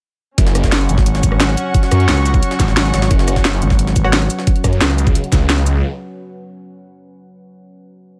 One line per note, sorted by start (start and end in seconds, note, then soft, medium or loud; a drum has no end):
0.38 0.88 F#1 loud
0.38 4.43 F#3 medium
0.38 4.43 C#4 medium
0.38 4.47 C#4 medium
0.38 2.40 C#5 medium
0.38 4.43 F#5 medium
0.38 kick loud
0.38 closed hi-hat medium
0.38 closed hi-hat loud
0.47 snare medium
0.47 closed hi-hat soft
0.55 4.47 F#4 medium
0.55 cross-stick soft
0.55 closed hi-hat medium
0.55 shaker medium
0.62 4.47 C#6 medium
0.62 kick medium
0.62 snare medium
0.62 closed hi-hat soft
0.68 4.47 F#5 medium
0.72 snare loud
0.72 closed hi-hat loud
0.72 closed hi-hat medium
0.81 shaker soft
0.89 1.22 G#1 loud
0.89 closed hi-hat medium
0.89 shaker medium
0.98 kick loud
0.98 snare medium
1.06 closed hi-hat loud
1.06 closed hi-hat medium
1.15 snare medium
1.15 closed hi-hat soft
1.23 1.56 G#1 loud
1.23 kick loud
1.23 closed hi-hat medium
1.23 shaker medium
1.32 cross-stick medium
1.40 snare loud
1.40 closed hi-hat loud
1.40 closed hi-hat medium
1.49 cross-stick soft
1.49 shaker soft
1.57 closed hi-hat medium
1.57 shaker medium
1.74 kick loud
1.74 closed hi-hat loud
1.74 closed hi-hat medium
1.83 snare soft
1.83 closed hi-hat soft
1.91 2.07 F#2 loud
1.91 cross-stick medium
1.91 closed hi-hat medium
1.91 shaker medium
2.00 closed hi-hat soft
2.08 2.41 C#2 loud
2.08 snare loud
2.08 closed hi-hat medium
2.17 cross-stick soft
2.17 shaker soft
2.26 snare soft
2.26 closed hi-hat medium
2.26 shaker medium
2.34 kick loud
2.34 shaker soft
2.43 4.45 B4 medium
2.43 closed hi-hat medium
2.51 snare medium
2.51 closed hi-hat soft
2.60 2.92 G#1 loud
2.60 kick loud
2.60 snare soft
2.60 closed hi-hat medium
2.60 shaker medium
2.68 snare medium
2.77 snare loud
2.77 closed hi-hat medium
2.77 closed hi-hat loud
2.85 snare soft
2.85 shaker soft
2.94 3.09 G#1 medium
2.94 snare loud
2.94 closed hi-hat medium
2.94 shaker medium
3.02 snare loud
3.02 closed hi-hat medium
3.11 3.60 F#1 loud
3.11 kick loud
3.11 closed hi-hat medium
3.19 snare medium
3.19 closed hi-hat soft
3.28 cross-stick medium
3.28 closed hi-hat medium
3.28 shaker medium
3.36 kick medium
3.36 snare medium
3.36 closed hi-hat soft
3.45 snare loud
3.45 closed hi-hat medium
3.53 shaker soft
3.62 3.95 G#1 loud
3.62 closed hi-hat medium
3.62 shaker medium
3.70 kick loud
3.70 snare medium
3.79 closed hi-hat medium
3.87 snare medium
3.87 closed hi-hat soft
3.96 4.29 G#1 loud
3.96 kick loud
3.96 closed hi-hat medium
3.96 shaker medium
4.04 4.09 F#4 medium
4.04 4.09 C#5 medium
4.04 4.09 F#5 medium
4.04 cross-stick medium
4.13 snare loud
4.13 closed hi-hat medium
4.21 cross-stick soft
4.21 shaker soft
4.30 closed hi-hat medium
4.30 shaker medium
4.39 snare medium
4.47 kick loud
4.47 closed hi-hat medium
4.56 closed hi-hat soft
4.64 4.80 F#2 loud
4.64 kick medium
4.64 cross-stick soft
4.64 closed hi-hat medium
4.64 shaker medium
4.73 closed hi-hat soft
4.81 5.14 C#2 loud
4.81 snare loud
4.81 closed hi-hat medium
4.90 cross-stick soft
4.90 shaker soft
4.98 closed hi-hat medium
4.98 shaker medium
5.07 kick loud
5.07 shaker soft
5.15 closed hi-hat medium
5.24 closed hi-hat soft
5.32 5.82 C#2 loud
5.32 kick loud
5.32 snare soft
5.32 closed hi-hat medium
5.32 shaker medium
5.49 snare loud
5.49 closed hi-hat medium
5.58 shaker soft
5.66 closed hi-hat medium
5.66 shaker medium